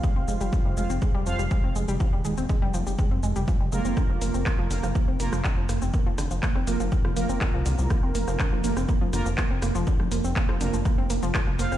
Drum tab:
HH |----------------|----------------|--o---o---o---o-|--o---o---o---o-|
SH |x-xxx-xxx-xxx-xx|x-xxx-xxx-xxx-xx|x-xxx-xxx-xxx-xx|x-xxx-xxx-xxx-xx|
CP |----------------|----------------|----x-------x---|----x-------x---|
SD |----------------|----------------|r---r--r---r--r-|--r--r---r--r---|
BD |o---o---o---o---|o---o---o---o---|o---o---o---o---|o---o---o---o---|

HH |--o---o---o---o-|--o---o---o---o-|
SH |x-xxx-xxx-xxx-xx|x-xxx-xxx-xxx-xx|
CP |----x-------x---|----x-------x---|
SD |r--r---r--r---r-|-r---r--r---r--r|
BD |o---o---o---o---|o---o---o---o---|